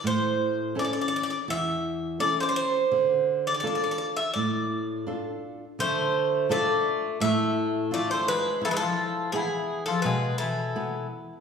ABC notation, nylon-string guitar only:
X:1
M:4/4
L:1/8
Q:1/4=84
K:none
V:1 name="Nylon-string guitar"
A,,2 [^CEA]2 E,,2 [CEA]2 | D,2 [DFA]2 A,,2 [DFA]2 | D,2 [DFA]2 A,,2 [DF]2 | E2 [B,E^G]2 B,,2 [B,EB]2 |]